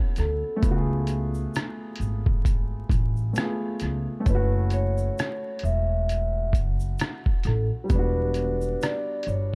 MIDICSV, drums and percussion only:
0, 0, Header, 1, 2, 480
1, 0, Start_track
1, 0, Tempo, 909091
1, 331, Time_signature, 4, 2, 24, 8
1, 5042, End_track
2, 0, Start_track
2, 0, Title_t, "Drums"
2, 85, Note_on_c, 9, 42, 58
2, 87, Note_on_c, 9, 82, 45
2, 104, Note_on_c, 9, 37, 29
2, 138, Note_off_c, 9, 42, 0
2, 140, Note_off_c, 9, 82, 0
2, 157, Note_off_c, 9, 37, 0
2, 330, Note_on_c, 9, 42, 81
2, 331, Note_on_c, 9, 36, 107
2, 334, Note_on_c, 9, 82, 58
2, 383, Note_off_c, 9, 42, 0
2, 384, Note_off_c, 9, 36, 0
2, 387, Note_off_c, 9, 82, 0
2, 565, Note_on_c, 9, 42, 70
2, 568, Note_on_c, 9, 82, 53
2, 617, Note_off_c, 9, 42, 0
2, 620, Note_off_c, 9, 82, 0
2, 709, Note_on_c, 9, 82, 52
2, 762, Note_off_c, 9, 82, 0
2, 816, Note_on_c, 9, 82, 74
2, 823, Note_on_c, 9, 42, 98
2, 826, Note_on_c, 9, 37, 96
2, 869, Note_off_c, 9, 82, 0
2, 875, Note_off_c, 9, 42, 0
2, 879, Note_off_c, 9, 37, 0
2, 1033, Note_on_c, 9, 42, 68
2, 1063, Note_on_c, 9, 82, 50
2, 1086, Note_off_c, 9, 42, 0
2, 1116, Note_off_c, 9, 82, 0
2, 1195, Note_on_c, 9, 36, 86
2, 1248, Note_off_c, 9, 36, 0
2, 1294, Note_on_c, 9, 36, 90
2, 1298, Note_on_c, 9, 42, 77
2, 1299, Note_on_c, 9, 82, 66
2, 1346, Note_off_c, 9, 36, 0
2, 1350, Note_off_c, 9, 42, 0
2, 1352, Note_off_c, 9, 82, 0
2, 1528, Note_on_c, 9, 36, 85
2, 1538, Note_on_c, 9, 42, 54
2, 1538, Note_on_c, 9, 82, 44
2, 1581, Note_off_c, 9, 36, 0
2, 1591, Note_off_c, 9, 42, 0
2, 1591, Note_off_c, 9, 82, 0
2, 1672, Note_on_c, 9, 82, 47
2, 1724, Note_off_c, 9, 82, 0
2, 1770, Note_on_c, 9, 82, 78
2, 1774, Note_on_c, 9, 42, 92
2, 1784, Note_on_c, 9, 37, 126
2, 1823, Note_off_c, 9, 82, 0
2, 1827, Note_off_c, 9, 42, 0
2, 1837, Note_off_c, 9, 37, 0
2, 2004, Note_on_c, 9, 42, 69
2, 2006, Note_on_c, 9, 82, 48
2, 2024, Note_on_c, 9, 37, 31
2, 2057, Note_off_c, 9, 42, 0
2, 2059, Note_off_c, 9, 82, 0
2, 2077, Note_off_c, 9, 37, 0
2, 2249, Note_on_c, 9, 42, 72
2, 2251, Note_on_c, 9, 36, 115
2, 2253, Note_on_c, 9, 82, 63
2, 2302, Note_off_c, 9, 42, 0
2, 2303, Note_off_c, 9, 36, 0
2, 2306, Note_off_c, 9, 82, 0
2, 2483, Note_on_c, 9, 42, 71
2, 2487, Note_on_c, 9, 82, 50
2, 2536, Note_off_c, 9, 42, 0
2, 2540, Note_off_c, 9, 82, 0
2, 2628, Note_on_c, 9, 82, 53
2, 2681, Note_off_c, 9, 82, 0
2, 2737, Note_on_c, 9, 82, 69
2, 2741, Note_on_c, 9, 42, 89
2, 2745, Note_on_c, 9, 37, 99
2, 2790, Note_off_c, 9, 82, 0
2, 2794, Note_off_c, 9, 42, 0
2, 2798, Note_off_c, 9, 37, 0
2, 2952, Note_on_c, 9, 42, 63
2, 2982, Note_on_c, 9, 82, 50
2, 3005, Note_off_c, 9, 42, 0
2, 3035, Note_off_c, 9, 82, 0
2, 3217, Note_on_c, 9, 42, 76
2, 3219, Note_on_c, 9, 82, 62
2, 3270, Note_off_c, 9, 42, 0
2, 3272, Note_off_c, 9, 82, 0
2, 3448, Note_on_c, 9, 36, 84
2, 3457, Note_on_c, 9, 42, 64
2, 3457, Note_on_c, 9, 82, 45
2, 3501, Note_off_c, 9, 36, 0
2, 3510, Note_off_c, 9, 42, 0
2, 3510, Note_off_c, 9, 82, 0
2, 3591, Note_on_c, 9, 82, 53
2, 3643, Note_off_c, 9, 82, 0
2, 3688, Note_on_c, 9, 82, 67
2, 3693, Note_on_c, 9, 42, 102
2, 3703, Note_on_c, 9, 37, 118
2, 3740, Note_off_c, 9, 82, 0
2, 3746, Note_off_c, 9, 42, 0
2, 3756, Note_off_c, 9, 37, 0
2, 3834, Note_on_c, 9, 36, 81
2, 3887, Note_off_c, 9, 36, 0
2, 3925, Note_on_c, 9, 82, 43
2, 3926, Note_on_c, 9, 42, 67
2, 3945, Note_on_c, 9, 37, 31
2, 3978, Note_off_c, 9, 42, 0
2, 3978, Note_off_c, 9, 82, 0
2, 3998, Note_off_c, 9, 37, 0
2, 4170, Note_on_c, 9, 42, 80
2, 4171, Note_on_c, 9, 36, 119
2, 4171, Note_on_c, 9, 82, 58
2, 4223, Note_off_c, 9, 36, 0
2, 4223, Note_off_c, 9, 42, 0
2, 4224, Note_off_c, 9, 82, 0
2, 4404, Note_on_c, 9, 42, 68
2, 4406, Note_on_c, 9, 82, 51
2, 4457, Note_off_c, 9, 42, 0
2, 4459, Note_off_c, 9, 82, 0
2, 4549, Note_on_c, 9, 82, 50
2, 4601, Note_off_c, 9, 82, 0
2, 4655, Note_on_c, 9, 82, 68
2, 4661, Note_on_c, 9, 42, 101
2, 4664, Note_on_c, 9, 37, 91
2, 4708, Note_off_c, 9, 82, 0
2, 4714, Note_off_c, 9, 42, 0
2, 4717, Note_off_c, 9, 37, 0
2, 4874, Note_on_c, 9, 42, 74
2, 4900, Note_on_c, 9, 82, 46
2, 4926, Note_off_c, 9, 42, 0
2, 4953, Note_off_c, 9, 82, 0
2, 5042, End_track
0, 0, End_of_file